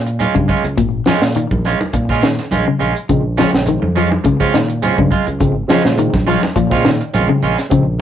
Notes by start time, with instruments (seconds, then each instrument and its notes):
Already playing: fingered electric bass A#2
0.06 muted clean electric guitar stroke, closed hi-hat, shekere
0.19 clean electric guitar G#3 C#4 F4, closed hi-hat, high conga, shekere
0.35 fingered electric bass G2, clean electric guitar C#3, muted clean electric guitar stroke, kick, high conga
0.48 clean electric guitar G#3 C#4 F4, kick, closed hi-hat, shekere
0.64 fingered electric bass C#2, muted clean electric guitar stroke, shekere
0.77 fingered electric bass G#1, clean electric guitar A#2, kick, closed hi-hat, high conga, shekere
1.06 clean electric guitar F3 G#3 C#4 F4, snare, closed hi-hat, high conga, shekere
1.22 fingered electric bass A#2, muted clean electric guitar stroke, snare, shekere
1.35 clean electric guitar D#3, muted clean electric guitar stroke, closed hi-hat, high conga, shekere
1.51 fingered electric bass A#1, muted clean electric guitar stroke, kick, high conga
1.65 clean electric guitar G#3 C#4 F4, snare, closed hi-hat, shekere
1.80 muted clean electric guitar stroke, muted fingered electric bass stroke, high conga
1.93 fingered electric bass A#2, muted clean electric guitar stroke, kick, closed hi-hat, high conga, shekere
2.09 clean electric guitar G#3 C#4 F4, kick
2.22 clean electric guitar D#3, snare, closed hi-hat, shekere
2.38 muted clean electric guitar stroke, snare, closed hi-hat, shekere
2.51 fingered electric bass A#1, clean electric guitar G#3 C#4 F4, closed hi-hat, high conga, shekere
2.67 clean electric guitar C#3, muted clean electric guitar stroke
2.79 fingered electric bass A#1, clean electric guitar G#3 C#4 F4, closed hi-hat, shekere
2.95 muted clean electric guitar stroke, shekere
3.09 fingered electric bass A#1, tine electric piano C#3 F3 G#3 C4, clean electric guitar C#3, kick, closed hi-hat, shekere
3.37 tine electric piano C#3 F3 G#3 C4, clean electric guitar F3 C#4 F4, snare, closed hi-hat, high conga, shekere
3.52 fingered electric bass A#1, muted clean electric guitar stroke, snare, shekere
3.66 clean electric guitar D#3, muted clean electric guitar stroke, closed hi-hat, shekere
3.82 fingered electric bass F2, muted clean electric guitar stroke, high conga
3.95 clean electric guitar F3 G#3 C#4 F4, closed hi-hat, shekere
4.11 muted clean electric guitar stroke, high conga
4.24 fingered electric bass C#2, clean electric guitar C#3, muted clean electric guitar stroke, kick, closed hi-hat, high conga, shekere
4.40 tine electric piano C#3 F3 G#3 C4, clean electric guitar G#3 C#4 F4, kick
4.54 fingered electric bass A#2, clean electric guitar D#3, snare, closed hi-hat, shekere
4.68 muted clean electric guitar stroke, closed hi-hat, shekere
4.82 tine electric piano C#3 F3 G#3 C4, clean electric guitar G#3 C#4 F4, closed hi-hat, high conga, shekere
4.98 fingered electric bass G2, clean electric guitar C#3, muted clean electric guitar stroke, kick, high conga
5.11 clean electric guitar G#3 F4, kick, closed hi-hat, shekere
5.27 fingered electric bass C#2, muted clean electric guitar stroke, shekere
5.40 fingered electric bass G#1, tine electric piano C#3 F3 G#3 C4, clean electric guitar C#3, kick, closed hi-hat, high conga, shekere
5.68 tine electric piano C#3 F3 G#3 C4, clean electric guitar F3 G#3 C#4 F4, snare, closed hi-hat, high conga, shekere
5.84 fingered electric bass A#2, muted clean electric guitar stroke, snare, shekere
5.98 clean electric guitar D#3, muted clean electric guitar stroke, closed hi-hat, high conga, shekere
6.13 fingered electric bass A#1, muted clean electric guitar stroke, kick, snare, high conga
6.27 clean electric guitar F3 G#3 C#4 F4, closed hi-hat, shekere
6.43 muted clean electric guitar stroke, snare, high conga
6.56 fingered electric bass A#2, clean electric guitar F3, muted clean electric guitar stroke, kick, closed hi-hat, high conga, shekere
6.69 tine electric piano C#3 F3 G#3 C4, clean electric guitar G#3 C#4 F4, kick
6.85 clean electric guitar D#3, snare, closed hi-hat, shekere
7.01 muted clean electric guitar stroke, closed hi-hat, shekere
7.13 fingered electric bass A#1, tine electric piano C#3 F3 G#3 C4, clean electric guitar G#3 C#4 F4, closed hi-hat, high conga, shekere
7.29 clean electric guitar C#3, muted clean electric guitar stroke
7.42 fingered electric bass A#1, clean electric guitar G#3 C#4 F4, closed hi-hat, shekere
7.58 muted clean electric guitar stroke, snare, shekere
7.70 fingered electric bass A#1, tine electric piano C#3 F3 G#3 C4, clean electric guitar C#3, kick, closed hi-hat, high conga, shekere